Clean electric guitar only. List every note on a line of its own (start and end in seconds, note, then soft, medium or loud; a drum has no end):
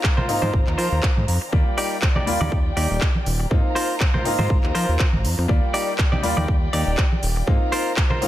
0.17 0.29 F4 medium
0.17 0.29 A#4 medium
0.17 0.29 C5 medium
0.42 0.60 F4 medium
0.42 0.60 A#4 medium
0.42 0.60 C5 medium
0.78 1.10 F4 medium
0.78 1.10 A#4 loud
0.78 1.10 C5 loud
1.41 muted clean electric guitar stroke soft
1.78 1.97 D#4 medium
1.78 1.97 G4 medium
1.78 1.97 D5 loud
2.16 2.27 D#4 medium
2.16 2.27 G4 medium
2.16 2.27 D5 loud
2.41 2.59 D#4 medium
2.41 2.59 G4 medium
2.41 2.59 D5 medium
2.77 3.08 D#4 loud
2.77 3.08 G4 loud
2.77 3.08 D5 loud
3.40 muted clean electric guitar stroke soft
3.75 3.95 F4 loud
3.75 3.95 A#4 medium
3.75 3.95 C5 loud
4.14 4.25 F4 medium
4.14 4.25 A#4 medium
4.14 4.25 C5 medium
4.39 4.57 F4 medium
4.39 4.57 A#4 medium
4.39 4.57 C5 medium
4.75 5.06 F4 loud
4.75 5.07 A#4 loud
4.75 5.07 C5 loud
5.38 muted clean electric guitar stroke soft
5.74 5.93 D#4 medium
5.74 5.93 G4 loud
5.74 5.93 D5 loud
6.12 6.24 D#4 medium
6.12 6.24 G4 medium
6.12 6.24 D5 loud
6.37 6.55 D#4 medium
6.37 6.55 G4 medium
6.37 6.55 D5 medium
6.73 7.05 D#4 loud
6.73 7.05 G4 medium
6.73 7.05 D5 loud
7.36 muted clean electric guitar stroke soft
7.72 7.92 F4 medium
7.72 7.92 A#4 loud
7.72 7.92 C5 loud
8.10 8.22 F4 medium
8.10 8.22 A#4 medium
8.10 8.22 C5 loud